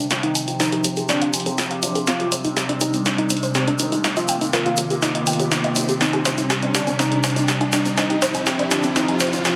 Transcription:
Already playing: synth drone C3, riser
0.11 analog synth pad F3 C4 G4, synth pluck F4, snare, closed hi-hat, shaker
0.23 analog synth lead D#4, synth pluck F5, closed hi-hat
0.35 synth pluck G#5, closed hi-hat, shaker
0.48 synth pluck F4, closed hi-hat, shaker
0.60 analog synth lead D#4, synth pluck C5, snare, closed hi-hat, shaker
0.72 synth pluck G4, closed hi-hat
0.84 synth pluck G4, closed hi-hat, low conga, shaker
0.96 synth pluck G#4, closed hi-hat, shaker
1.09 analog synth lead D4, synth pluck F4, snare, closed hi-hat, shaker
1.22 synth pluck F5, closed hi-hat
1.34 synth pluck G#5, closed hi-hat, shaker
1.40 closed hi-hat
1.46 synth pluck G#4, closed hi-hat, low conga, shaker
1.58 synth pluck F4, snare, closed hi-hat, shaker
1.71 synth pluck F5, closed hi-hat
1.83 synth pluck F4, closed hi-hat, low conga, shaker
1.95 synth pluck G#4, closed hi-hat, shaker
2.07 analog synth pad C3 G3 D4, synth pluck C4, analog synth lead F4, snare, closed hi-hat, shaker
2.20 synth pluck G4, closed hi-hat
2.32 synth pluck C5, closed hi-hat, shaker
2.44 synth pluck D#4, closed hi-hat, shaker
2.57 synth pluck G4, snare, closed hi-hat, shaker
2.69 synth pluck D4, closed hi-hat
2.81 analog synth lead D#4, synth pluck G4, closed hi-hat, low conga, shaker
2.93 synth pluck C4, closed hi-hat, shaker
3.06 synth pluck D#4, snare, closed hi-hat, low conga, shaker
3.18 synth pluck D#4, analog synth lead D#4, closed hi-hat
3.30 synth pluck C4, closed hi-hat, shaker
3.37 closed hi-hat
3.43 synth pluck C5, closed hi-hat, shaker
3.55 analog synth lead C4, synth pluck G4, snare, closed hi-hat, shaker
3.68 synth pluck D4, closed hi-hat
3.79 synth pluck D4, analog synth lead D#4, closed hi-hat, low conga, shaker
3.92 synth pluck D#4, closed hi-hat, shaker
4.04 analog synth pad D#3 A#3 F4, synth pluck D#4, snare, closed hi-hat, shaker
4.17 analog synth lead F4, synth pluck D#5, closed hi-hat, shaker
4.28 synth pluck G5, closed hi-hat, shaker
4.41 synth pluck D#4, closed hi-hat, shaker
4.53 analog synth lead F4, synth pluck A#4, snare, closed hi-hat, shaker
4.66 synth pluck F4, closed hi-hat
4.77 synth pluck F4, closed hi-hat, low conga, shaker
4.90 synth pluck G4, closed hi-hat, shaker
5.02 analog synth lead D#4, synth pluck D#4, snare, closed hi-hat, shaker
5.15 synth pluck D#5, closed hi-hat
5.27 synth pluck G5, closed hi-hat, shaker
5.33 closed hi-hat
5.39 synth pluck G4, closed hi-hat, low conga, shaker
5.52 synth pluck D#4, snare, closed hi-hat, shaker
5.64 synth pluck D#5, closed hi-hat
5.76 synth pluck D#4, closed hi-hat, low conga, shaker
5.89 synth pluck G4, closed hi-hat, shaker
6.01 analog synth pad C3 G3 D4, synth pluck C4, analog synth lead D#4, snare, closed hi-hat, shaker
6.13 synth pluck G4, closed hi-hat, low woodblock
6.25 synth pluck C5, snare, closed hi-hat, shaker
6.38 synth pluck D#4, closed hi-hat, shaker
6.50 synth pluck G4, snare, closed hi-hat, low woodblock, shaker
6.63 synth pluck D4, closed hi-hat
6.75 analog synth lead D4, synth pluck G4, snare, closed hi-hat, low conga, shaker
6.87 synth pluck C4, closed hi-hat, low woodblock, shaker
6.99 synth pluck C4, analog synth lead D#4, snare, closed hi-hat, low conga, shaker
7.12 synth pluck G4, closed hi-hat
7.24 synth pluck C5, snare, closed hi-hat, low woodblock, shaker
7.30 closed hi-hat
7.36 synth pluck D#4, closed hi-hat, shaker
7.48 synth pluck G4, snare, closed hi-hat, shaker
7.61 synth pluck D4, closed hi-hat, low woodblock
7.73 analog synth lead D4, synth pluck G4, snare, closed hi-hat, low conga, shaker
7.85 synth pluck C4, closed hi-hat, shaker
7.97 analog synth pad F3 C4 G4, synth pluck C4, analog synth lead D#4, snare, closed hi-hat, low woodblock, shaker
8.10 synth pluck G4, closed hi-hat
8.22 synth pluck C5, snare, closed hi-hat, shaker
8.34 synth pluck D#4, closed hi-hat, low woodblock, shaker
8.46 synth pluck G4, snare, closed hi-hat, shaker
8.59 synth pluck D4, closed hi-hat
8.71 analog synth lead D4, synth pluck G4, snare, closed hi-hat, low conga, low woodblock, shaker
8.83 synth pluck C4, closed hi-hat, shaker
8.96 synth pluck C4, analog synth lead D#4, snare, closed hi-hat, shaker
9.08 synth pluck G4, closed hi-hat, low woodblock
9.20 synth pluck C5, snare, closed hi-hat, shaker
9.27 closed hi-hat
9.33 synth pluck D#4, closed hi-hat, low conga, shaker
9.45 synth pluck G4, snare, closed hi-hat, low woodblock, shaker

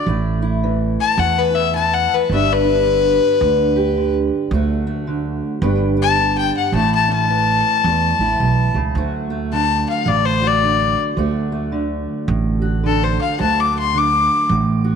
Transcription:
0.06 upright bass A1, steel-string acoustic guitar A2 A3 E4
0.42 steel-string acoustic guitar E4
0.64 steel-string acoustic guitar E3
1.01 fiddle A5
1.18 upright bass E2, steel-string acoustic guitar E2, fiddle F#5
1.38 fiddle B4
1.53 steel-string acoustic guitar E4, fiddle E5
1.75 steel-string acoustic guitar E3, fiddle A5
1.94 fiddle F#5
2.15 fiddle B4
2.29 upright bass G1, steel-string acoustic guitar G2 B3 D4
2.34 steel-string acoustic guitar G4, fiddle E5
2.53 fiddle B4
2.65 steel-string acoustic guitar D4
2.85 steel-string acoustic guitar D3
3.41 upright bass D2, steel-string acoustic guitar D3
3.76 steel-string acoustic guitar G4
3.97 steel-string acoustic guitar D3
4.51 upright bass D2, steel-string acoustic guitar D2 F#3 A3 F#4
4.87 steel-string acoustic guitar A3
5.07 steel-string acoustic guitar D3
5.62 upright bass G1, steel-string acoustic guitar G2 B3 D4 G4
5.97 steel-string acoustic guitar D4
6.02 fiddle A5
6.19 steel-string acoustic guitar D3
6.38 fiddle G5
6.58 fiddle F#5
6.72 upright bass A1, steel-string acoustic guitar A2 A3 C#4 E4, fiddle A5
6.95 fiddle A5
7.08 steel-string acoustic guitar C#4
7.13 fiddle A5
7.30 steel-string acoustic guitar E3
7.84 upright bass E2, steel-string acoustic guitar E2
8.19 upright bass A1, steel-string acoustic guitar E4
8.40 upright bass B1, steel-string acoustic guitar B2
8.74 upright bass C#2, steel-string acoustic guitar C#3
8.95 upright bass D2, steel-string acoustic guitar D2 F#3 A3 F#4
9.30 steel-string acoustic guitar A3
9.52 steel-string acoustic guitar D3, fiddle A5
9.90 fiddle F5
10.06 upright bass A1, steel-string acoustic guitar A2, fiddle D5
10.25 fiddle C5
10.42 steel-string acoustic guitar F#4
10.47 fiddle D5
10.62 steel-string acoustic guitar D3
11.17 steel-string acoustic guitar D2 F#3 A3 F#4, upright bass D2
11.52 steel-string acoustic guitar A3
11.72 steel-string acoustic guitar D3
12.28 upright bass A1, steel-string acoustic guitar A2
12.62 steel-string acoustic guitar F#4
12.83 steel-string acoustic guitar D3, fiddle A4
13.04 fiddle C5
13.22 fiddle F5
13.39 steel-string acoustic guitar D2 F#3 A3 F#4, upright bass D2, fiddle A5
13.60 fiddle D6
13.73 steel-string acoustic guitar A3
13.79 fiddle C6
13.94 steel-string acoustic guitar D3, fiddle D6
14.49 upright bass A1, steel-string acoustic guitar A2
14.84 steel-string acoustic guitar F#4

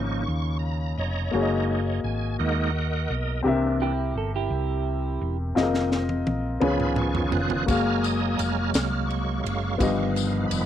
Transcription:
Already playing: fingered electric bass G#1, grand piano C#3 A#3 D#4 F4 C#5, tonewheel organ F3 A#3 D#4 C#6
0.23 tonewheel organ C#6
0.28 fingered electric bass D#2
0.59 tonewheel organ A#5
0.97 fingered electric bass F1, tonewheel organ C#5 D#5 A#5
1.31 fingered electric bass F#1, tonewheel organ G#3 A#3 D#4, grand piano A#3 F#4 G#4
1.36 grand piano C#5
1.43 grand piano D#5
2.04 fingered electric bass G#1, tonewheel organ G#5
2.39 fingered electric bass D#2, tonewheel organ G#3 A#3 D#4 A#4 D#5 F#5
3.10 fingered electric bass B1
3.43 fingered electric bass C2, grand piano C3 C4 G4 A#4, tonewheel organ E3 A#3 D4
3.47 grand piano E5
3.82 clean electric guitar E4 G4
4.15 fingered electric bass G1, clean electric guitar A4
4.36 clean electric guitar E4 G4
4.50 fingered electric bass C2
5.21 fingered electric bass E1
5.55 fingered electric bass F1, tonewheel organ D#3 A#3 C4, grand piano C4 F4 G#4 D#5, snare
5.63 grand piano A#4
5.74 snare
5.92 snare
6.09 high tom
6.27 fingered electric bass A#1, high tom
6.60 fingered electric bass C#2, grand piano C#3 B3 F4 G#4 C#5, tonewheel organ D#3 F3 B3 F4 G#5 B5, mid tom
6.80 mid tom
6.96 tonewheel organ C#6, mid tom
7.15 floor tom
7.32 fingered electric bass F1, tonewheel organ F#6, floor tom
7.50 floor tom
7.66 fingered electric bass F#1, tonewheel organ F#3 G#3 G#5 A#5, grand piano A#3 F#4 G#4, kick, ride bell, tambourine
7.70 tonewheel organ A#3 F6, grand piano F5
8.03 tonewheel organ D#6, ride bell, tambourine
8.39 fingered electric bass F1, tonewheel organ F6, ride bell, tambourine
8.74 fingered electric bass C2, tonewheel organ F6, snare, ride bell, tambourine
9.07 tonewheel organ C#6, ride bell
9.43 fingered electric bass F#1, tonewheel organ C#3 G#3 A#3 F5 C#6, ride bell
9.76 grand piano G2 B3 F4, tonewheel organ D#3 F3 B3
9.80 fingered electric bass G1, grand piano G4 D#5, kick, ride bell, tambourine
10.16 ride bell, tambourine
10.48 fingered electric bass F1, tonewheel organ B5, ride bell, tambourine

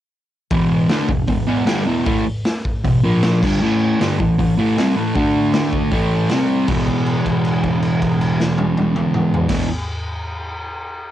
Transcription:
0.50 distorted electric guitar E2 B2 E3, kick, open hi-hat
0.89 distorted electric guitar D3 A3 D4, snare, open hi-hat
1.08 distorted electric guitar E2 B2, kick
1.27 distorted electric guitar E2 B2, kick, open hi-hat
1.47 distorted electric guitar E2 B2 E3
1.67 distorted electric guitar G2 D3 G3, snare, open hi-hat
1.86 distorted electric guitar E2 B2 E3
2.05 distorted electric guitar A2 E3 A3, kick, open hi-hat
2.45 snare, open hi-hat
2.65 kick
2.84 distorted electric guitar E2 B2, kick, open hi-hat
3.04 distorted electric guitar A#2 F3 A#3
3.22 snare, open hi-hat
3.42 distorted electric guitar G2 D3 G3, kick, crash
3.61 distorted electric guitar A2 E3 A3
4.00 distorted electric guitar G2 D3 G3, snare, open hi-hat
4.20 distorted electric guitar A2 E3, kick
4.39 distorted electric guitar A2 E3, kick, open hi-hat
4.59 distorted electric guitar A2 E3 A3
4.78 distorted electric guitar C3 G3 C4, snare, open hi-hat
4.96 distorted electric guitar A2 E3 A3
5.15 distorted electric guitar D3 A3 D4, kick, open hi-hat
5.53 snare, open hi-hat
5.73 kick
5.91 distorted electric guitar A2 E3 A3, kick, open hi-hat
6.29 distorted electric guitar C3 G3 C4, snare, open hi-hat
6.67 distorted electric guitar E2 B2, kick, crash
6.72 distorted electric guitar E3
6.87 kick, crash
7.06 crash
7.26 kick, crash
7.45 crash
7.63 kick, crash
7.82 crash
8.02 kick, crash
8.21 crash
8.40 snare
8.58 high tom
8.77 high tom
8.96 mid tom
9.14 mid tom
9.34 floor tom
9.48 distorted electric guitar E2 B2 E3, kick, snare, crash

